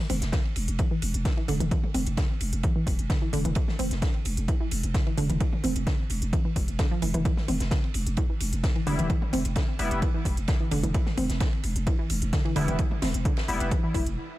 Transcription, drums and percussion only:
0.10 open hi-hat loud
0.10 mid tom medium
0.10 ride medium
0.22 snare medium
0.22 closed hi-hat medium
0.32 kick loud
0.32 snare loud
0.32 closed hi-hat medium
0.32 ride medium
0.45 ride soft
0.56 open hi-hat medium
0.56 ride medium
0.68 closed hi-hat medium
0.79 kick loud
0.79 closed hi-hat medium
0.79 ride medium
1.02 open hi-hat loud
1.02 ride medium
1.14 closed hi-hat medium
1.25 kick loud
1.25 snare loud
1.25 closed hi-hat medium
1.25 ride medium
1.37 ride soft
1.48 open hi-hat medium
1.48 ride medium
1.60 closed hi-hat medium
1.60 mid tom medium
1.60 ride soft
1.71 kick loud
1.71 closed hi-hat medium
1.71 ride medium
1.83 mid tom medium
1.94 open hi-hat loud
1.94 mid tom medium
1.94 ride medium
2.07 closed hi-hat medium
2.07 ride soft
2.17 kick loud
2.17 snare loud
2.17 closed hi-hat medium
2.17 ride medium
2.41 open hi-hat loud
2.41 ride medium
2.53 closed hi-hat medium
2.63 kick loud
2.63 closed hi-hat medium
2.63 ride medium
2.87 kick medium
2.87 open hi-hat loud
2.87 ride medium
2.99 closed hi-hat medium
3.10 kick loud
3.10 snare loud
3.10 closed hi-hat medium
3.10 ride medium
3.33 open hi-hat medium
3.33 ride medium
3.45 closed hi-hat medium
3.45 mid tom medium
3.55 kick loud
3.55 closed hi-hat medium
3.55 ride loud
3.68 snare soft
3.68 mid tom medium
3.79 open hi-hat loud
3.79 mid tom medium
3.79 ride medium
3.91 snare soft
3.91 closed hi-hat medium
4.02 kick loud
4.02 snare loud
4.02 closed hi-hat medium
4.02 ride medium
4.14 ride soft
4.25 open hi-hat medium
4.25 ride medium
4.37 closed hi-hat medium
4.48 kick loud
4.48 closed hi-hat medium
4.48 ride medium
4.71 open hi-hat loud
4.71 ride medium
4.83 closed hi-hat medium
4.94 kick loud
4.94 snare loud
4.94 closed hi-hat medium
4.94 ride medium
5.07 ride soft
5.18 open hi-hat loud
5.18 ride medium
5.30 closed hi-hat medium
5.30 mid tom medium
5.30 ride soft
5.40 kick loud
5.40 closed hi-hat medium
5.40 ride medium
5.53 mid tom medium
5.64 open hi-hat loud
5.64 mid tom medium
5.64 ride medium
5.76 closed hi-hat medium
5.76 ride soft
5.87 kick loud
5.87 snare loud
5.87 closed hi-hat medium
5.87 ride medium
6.10 open hi-hat loud
6.10 ride medium
6.22 closed hi-hat medium
6.33 kick loud
6.33 closed hi-hat medium
6.33 ride medium
6.56 kick medium
6.56 open hi-hat loud
6.56 ride medium
6.68 closed hi-hat medium
6.79 kick loud
6.79 snare loud
6.79 closed hi-hat medium
6.79 ride medium
7.02 open hi-hat medium
7.02 ride medium
7.14 closed hi-hat medium
7.14 mid tom medium
7.25 kick loud
7.25 closed hi-hat medium
7.25 ride medium
7.37 snare soft
7.37 mid tom medium
7.48 open hi-hat loud
7.48 mid tom medium
7.48 ride medium
7.60 snare medium
7.60 closed hi-hat medium
7.71 kick loud
7.71 snare loud
7.71 closed hi-hat medium
7.71 ride medium
7.84 ride soft
7.94 open hi-hat loud
7.94 ride medium
8.07 closed hi-hat medium
8.17 kick loud
8.17 closed hi-hat medium
8.17 ride medium
8.40 open hi-hat loud
8.40 ride medium
8.53 closed hi-hat medium
8.64 kick loud
8.64 snare loud
8.64 closed hi-hat medium
8.64 ride medium
8.76 ride soft
8.87 open hi-hat medium
8.87 ride medium
8.99 closed hi-hat medium
8.99 mid tom medium
8.99 ride soft
9.10 kick loud
9.10 closed hi-hat medium
9.10 ride medium
9.22 mid tom medium
9.33 open hi-hat loud
9.33 mid tom medium
9.33 ride medium
9.45 closed hi-hat medium
9.45 ride soft
9.56 kick loud
9.56 snare loud
9.56 closed hi-hat medium
9.56 ride medium
9.79 open hi-hat medium
9.79 ride medium
9.91 closed hi-hat medium
10.02 kick loud
10.02 closed hi-hat medium
10.02 ride medium
10.25 kick medium
10.25 open hi-hat loud
10.25 ride medium
10.37 closed hi-hat medium
10.48 kick loud
10.48 snare loud
10.48 closed hi-hat medium
10.48 ride medium
10.71 open hi-hat medium
10.71 ride medium
10.84 closed hi-hat medium
10.84 mid tom medium
10.94 kick loud
10.94 closed hi-hat medium
10.94 ride medium
11.06 snare soft
11.06 mid tom loud
11.18 open hi-hat loud
11.18 mid tom medium
11.18 ride medium
11.29 snare soft
11.29 closed hi-hat medium
11.40 kick loud
11.40 snare loud
11.40 closed hi-hat medium
11.40 ride medium
11.53 ride soft
11.63 open hi-hat medium
11.63 ride medium
11.76 closed hi-hat medium
11.87 kick loud
11.87 closed hi-hat medium
11.87 ride medium
12.10 open hi-hat loud
12.10 ride medium
12.22 closed hi-hat medium
12.33 kick loud
12.33 snare loud
12.33 closed hi-hat medium
12.33 ride medium
12.45 ride medium
12.56 open hi-hat medium
12.56 ride medium
12.68 closed hi-hat medium
12.68 mid tom medium
12.68 ride soft
12.79 kick loud
12.79 closed hi-hat medium
12.79 ride medium
12.91 mid tom medium
13.02 snare loud
13.02 open hi-hat loud
13.02 mid tom medium
13.02 ride medium
13.14 closed hi-hat medium
13.25 kick loud
13.25 closed hi-hat medium
13.25 ride medium
13.37 snare loud
13.37 ride medium
13.48 open hi-hat medium
13.60 closed hi-hat medium
13.60 ride medium
13.71 kick loud
13.71 closed hi-hat medium
13.71 ride medium
13.94 kick medium
13.94 open hi-hat loud
13.94 ride medium
14.07 closed hi-hat medium

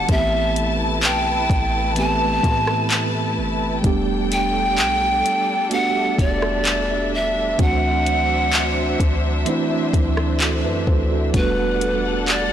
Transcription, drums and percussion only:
0.09 kick loud
0.09 closed hi-hat medium
0.56 closed hi-hat medium
1.03 clap loud
1.03 closed hi-hat medium
1.50 kick medium
1.50 closed hi-hat medium
1.96 closed hi-hat medium
2.43 kick medium
2.43 closed hi-hat medium
2.67 cross-stick medium
2.90 clap loud
2.90 closed hi-hat medium
3.84 kick loud
3.84 closed hi-hat medium
4.32 closed hi-hat medium
4.78 clap loud
4.78 closed hi-hat medium
5.26 closed hi-hat medium
5.71 closed hi-hat medium
6.19 kick loud
6.19 closed hi-hat medium
6.42 cross-stick medium
6.65 clap loud
6.65 closed hi-hat medium
7.59 kick loud
7.59 closed hi-hat medium
8.06 closed hi-hat medium
8.53 clap loud
8.53 closed hi-hat medium
9.00 kick medium
9.00 closed hi-hat medium
9.46 closed hi-hat medium
9.93 kick loud
9.93 closed hi-hat medium
10.17 cross-stick medium
10.40 clap loud
10.40 closed hi-hat medium
10.87 kick loud
11.34 kick loud
11.34 closed hi-hat medium
11.81 closed hi-hat medium
12.28 clap loud
12.28 closed hi-hat medium

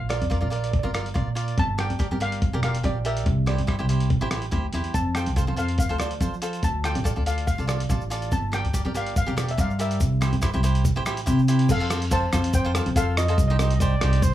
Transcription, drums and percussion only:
0.10 cross-stick medium
0.10 closed hi-hat medium
0.22 closed hi-hat medium
0.31 kick medium
0.31 closed hi-hat medium
0.53 closed hi-hat medium
0.64 closed hi-hat medium
0.73 kick medium
0.73 closed hi-hat soft
0.95 cross-stick medium
0.95 closed hi-hat medium
1.06 closed hi-hat medium
1.16 kick medium
1.16 closed hi-hat soft
1.37 closed hi-hat medium
1.48 closed hi-hat soft
1.58 kick medium
1.58 closed hi-hat soft
1.79 cross-stick medium
1.79 closed hi-hat medium
1.90 closed hi-hat medium
2.00 kick medium
2.00 closed hi-hat medium
2.21 closed hi-hat medium
2.32 closed hi-hat medium
2.42 kick medium
2.42 closed hi-hat soft
2.63 cross-stick medium
2.63 closed hi-hat medium
2.75 closed hi-hat medium
2.84 kick medium
2.84 closed hi-hat medium
3.05 closed hi-hat medium
3.17 closed hi-hat medium
3.26 kick medium
3.26 closed hi-hat medium
3.47 cross-stick medium
3.47 closed hi-hat medium
3.58 closed hi-hat medium
3.68 kick medium
3.68 cross-stick medium
3.68 closed hi-hat medium
3.89 closed hi-hat medium
4.00 closed hi-hat medium
4.10 kick medium
4.10 closed hi-hat soft
4.31 cross-stick medium
4.31 closed hi-hat medium
4.42 closed hi-hat medium
4.52 kick medium
4.52 closed hi-hat soft
4.73 closed hi-hat medium
4.84 closed hi-hat soft
4.94 kick medium
4.94 closed hi-hat soft
4.94 shaker medium
5.15 cross-stick medium
5.15 closed hi-hat medium
5.15 shaker medium
5.26 closed hi-hat medium
5.36 kick medium
5.36 closed hi-hat soft
5.36 shaker medium
5.57 closed hi-hat medium
5.57 shaker medium
5.68 closed hi-hat medium
5.78 kick loud
5.78 closed hi-hat medium
5.78 shaker medium
5.91 shaker soft
6.00 cross-stick medium
6.00 closed hi-hat medium
6.00 shaker medium
6.11 closed hi-hat medium
6.21 kick medium
6.21 closed hi-hat medium
6.21 shaker medium
6.34 shaker soft
6.42 closed hi-hat medium
6.42 shaker medium
6.53 closed hi-hat medium
6.53 shaker soft
6.63 kick medium
6.63 closed hi-hat medium
6.63 shaker medium
6.84 cross-stick medium
6.84 closed hi-hat medium
6.84 shaker medium
6.95 closed hi-hat medium
7.05 kick medium
7.05 closed hi-hat medium
7.05 shaker medium
7.26 closed hi-hat medium
7.26 shaker medium
7.38 closed hi-hat medium
7.48 kick medium
7.48 closed hi-hat medium
7.48 shaker medium
7.59 shaker soft
7.69 cross-stick medium
7.69 closed hi-hat medium
7.69 shaker medium
7.80 closed hi-hat medium
7.90 kick medium
7.90 closed hi-hat soft
7.90 shaker medium
8.01 shaker soft
8.11 closed hi-hat medium
8.11 shaker medium
8.22 closed hi-hat soft
8.22 shaker soft
8.32 kick medium
8.32 closed hi-hat medium
8.32 shaker medium
8.53 cross-stick medium
8.53 closed hi-hat medium
8.53 shaker medium
8.65 closed hi-hat medium
8.74 kick medium
8.74 closed hi-hat medium
8.74 shaker medium
8.95 closed hi-hat medium
8.95 shaker medium
9.06 closed hi-hat medium
9.16 kick medium
9.16 closed hi-hat soft
9.16 shaker medium
9.28 shaker soft
9.38 cross-stick medium
9.38 closed hi-hat medium
9.38 shaker medium
9.48 closed hi-hat medium
9.58 kick medium
9.58 closed hi-hat medium
9.58 shaker medium
9.70 shaker soft
9.79 closed hi-hat medium
9.79 shaker medium
9.91 closed hi-hat medium
9.91 shaker soft
10.00 kick medium
10.00 closed hi-hat medium
10.00 shaker loud
10.21 cross-stick medium
10.21 closed hi-hat medium
10.21 shaker medium
10.33 closed hi-hat medium
10.33 shaker soft
10.42 kick medium
10.42 cross-stick medium
10.42 closed hi-hat medium
10.42 shaker medium
10.54 shaker soft
10.64 closed hi-hat medium
10.64 shaker medium
10.75 closed hi-hat medium
10.75 shaker soft
10.85 kick medium
10.85 closed hi-hat soft
10.85 shaker loud
11.06 cross-stick medium
11.06 closed hi-hat medium
11.06 shaker medium
11.17 closed hi-hat medium
11.17 shaker soft
11.27 kick medium
11.27 closed hi-hat medium
11.27 shaker medium
11.38 shaker soft
11.48 closed hi-hat medium
11.48 shaker medium
11.59 closed hi-hat medium
11.69 kick loud
11.69 closed hi-hat medium
11.69 crash loud
11.69 shaker loud
11.90 cross-stick medium
11.90 closed hi-hat medium
11.90 shaker medium
12.02 closed hi-hat medium
12.11 kick medium
12.11 closed hi-hat medium
12.11 shaker loud
12.33 cross-stick medium
12.33 closed hi-hat medium
12.33 shaker medium
12.44 closed hi-hat medium
12.53 kick loud
12.53 closed hi-hat medium
12.53 shaker loud
12.75 cross-stick medium
12.75 closed hi-hat medium
12.75 shaker medium
12.86 closed hi-hat medium
12.96 kick medium
12.96 closed hi-hat medium
12.96 shaker loud
13.17 cross-stick medium
13.17 closed hi-hat medium
13.17 shaker medium
13.28 closed hi-hat medium
13.38 kick loud
13.38 closed hi-hat medium
13.38 shaker loud
13.59 cross-stick medium
13.59 closed hi-hat medium
13.59 shaker medium
13.71 closed hi-hat medium
13.80 kick medium
13.80 closed hi-hat medium
13.80 shaker loud
14.01 cross-stick medium
14.01 closed hi-hat medium
14.13 closed hi-hat medium
14.22 kick loud
14.22 closed hi-hat medium
14.22 shaker medium

